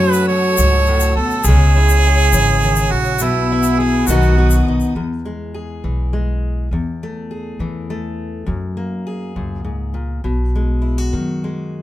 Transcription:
0.00 0.53 F#2 loud
0.00 0.58 F#2 medium
0.00 1.42 F#3 medium
0.00 1.43 A3 medium
0.00 0.30 C#4 medium
0.00 1.42 F#4 medium
0.00 1.43 A4 medium
0.00 0.12 C#5 loud
0.00 1.44 F#5 medium
0.00 4.03 E6 medium
0.12 0.24 B4 loud
0.12 shaker medium
0.28 1.43 C#4 medium
0.28 1.17 C#5 loud
0.57 1.13 C#2 loud
0.57 0.88 G#2 medium
0.57 shaker loud
0.86 1.16 A2 medium
0.86 shaker soft
1.00 shaker medium
1.16 1.46 D2 medium
1.16 1.45 B2 medium
1.16 1.47 A4 medium
1.30 shaker soft
1.44 2.28 C#2 loud
1.44 2.89 C#3 medium
1.44 2.93 G#4 loud
1.44 3.19 C#5 medium
1.44 3.19 G#5 medium
1.44 shaker loud
1.48 3.18 G#3 medium
1.76 3.50 E4 medium
1.89 shaker medium
2.07 3.18 C#4 medium
2.32 2.88 G#1 loud
2.32 2.62 E3 medium
2.32 shaker loud
2.62 2.92 D#3 medium
2.62 shaker soft
2.76 shaker medium
2.91 3.21 A#1 medium
2.91 3.20 C#3 medium
2.91 3.24 F#4 medium
3.05 shaker soft
3.19 4.04 B1 loud
3.19 4.05 B2 medium
3.19 4.05 B3 medium
3.19 3.81 E4 medium
3.19 4.93 B4 medium
3.19 4.06 F#5 medium
3.19 shaker medium
3.52 3.79 E4 medium
3.63 shaker medium
3.80 4.08 E4 medium
3.80 4.08 G#4 medium
4.07 4.63 B1 loud
4.07 4.92 B2 medium
4.07 4.92 D#3 medium
4.07 4.93 B3 medium
4.07 4.67 D#4 medium
4.07 4.66 F#4 medium
4.07 4.37 F#4 medium
4.07 4.94 F#5 medium
4.07 4.94 D#6 medium
4.07 shaker medium
4.22 shaker soft
4.38 4.92 F#4 medium
4.50 shaker medium
4.68 4.93 D#4 medium
4.80 shaker soft
4.95 5.79 E2 medium
4.95 6.71 E2 medium
5.25 6.12 G#3 soft
5.54 6.68 G#4 soft
5.84 6.68 B1 medium
5.84 6.68 E3 medium
6.13 6.68 G#3 medium
6.71 7.55 E2 medium
6.71 8.46 E2 medium
7.03 7.89 A3 soft
7.31 8.44 G#4 soft
7.59 8.43 E2 medium
7.59 8.44 E3 medium
7.90 8.45 A3 medium
8.46 9.35 F#2 medium
8.46 9.32 F#2 medium
8.77 10.20 A#3 soft
9.07 10.21 G#4 soft
9.36 10.20 C#2 medium
9.36 9.64 F#2 medium
9.64 9.94 G#2 medium
9.94 10.24 A#2 soft
10.24 11.09 B1 medium
10.24 11.12 B2 medium
10.55 11.43 G#3 soft
10.82 10.98 E4 soft
10.98 11.82 F#4 soft
11.13 11.82 F#2 medium
11.13 11.82 D#3 medium
11.44 11.82 G#3 soft

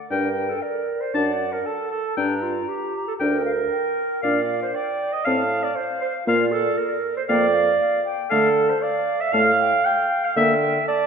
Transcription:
0.10 0.54 G2 medium
0.10 0.29 D4 medium
0.10 0.51 A#4 medium
0.10 0.64 G5 medium
0.10 0.29 G5 medium
0.50 0.63 A4 medium
0.61 1.03 A#4 medium
0.61 1.15 D5 medium
1.01 1.15 C5 medium
1.14 1.58 F#2 medium
1.14 1.33 D4 medium
1.14 1.54 D5 medium
1.14 1.68 F#5 medium
1.14 1.33 A5 soft
1.52 1.67 A#4 medium
1.66 1.90 A4 medium
1.66 2.16 A5 medium
1.91 2.17 A4 medium
2.17 2.60 G2 medium
2.17 2.44 D4 medium
2.17 2.35 D4 medium
2.17 2.35 G5 medium
2.17 3.18 A#5 medium
2.42 2.70 F4 medium
2.68 3.07 G4 medium
3.08 3.13 A4 medium
3.20 3.63 D2 medium
3.20 3.39 D4 medium
3.20 4.21 A#4 medium
3.20 3.38 G5 medium
3.20 3.45 G5 medium
3.46 3.52 F5 medium
3.71 4.22 G5 medium
4.22 4.67 A#2 medium
4.22 4.42 D4 medium
4.22 4.61 D5 medium
4.22 4.41 F5 medium
4.22 4.74 F5 medium
4.63 4.76 C5 medium
4.75 5.15 D5 medium
4.75 5.25 G5 medium
5.13 5.27 D#5 medium
5.25 5.69 A2 medium
5.25 5.44 C4 medium
5.25 5.43 F5 medium
5.25 5.65 F5 medium
5.25 5.76 A5 medium
5.63 5.77 D5 medium
5.76 6.01 C5 medium
5.76 6.28 F5 medium
6.02 6.13 C5 medium
6.27 6.70 A#2 medium
6.27 6.45 A#3 medium
6.27 6.54 F4 medium
6.27 7.01 D5 medium
6.27 6.46 F5 medium
6.52 6.79 A4 medium
6.77 7.17 A#4 medium
7.17 7.23 C5 medium
7.29 7.72 F2 medium
7.29 7.47 A#3 medium
7.29 8.03 D5 loud
7.29 7.47 F5 medium
7.29 7.56 G5 medium
7.54 7.80 F5 medium
7.80 8.04 F5 medium
8.05 8.32 G5 medium
8.30 8.74 D3 medium
8.30 8.50 A3 medium
8.30 8.71 A4 medium
8.30 8.49 F5 medium
8.30 8.81 A5 medium
8.69 8.84 C5 medium
8.82 9.23 D5 medium
8.82 9.32 F5 medium
9.21 9.34 E5 loud
9.33 9.76 A2 medium
9.33 9.52 A3 medium
9.33 9.87 F5 loud
9.33 9.51 F5 medium
9.33 9.39 A5 medium
9.59 9.85 G5 medium
9.85 10.36 F5 medium
9.85 10.26 G5 medium
10.24 10.36 F5 medium
10.36 10.79 D3 medium
10.36 10.55 A#3 medium
10.36 10.87 E5 medium
10.36 10.55 E5 medium
10.36 10.87 G5 medium
10.87 11.07 D5 medium
10.87 11.07 A5 medium

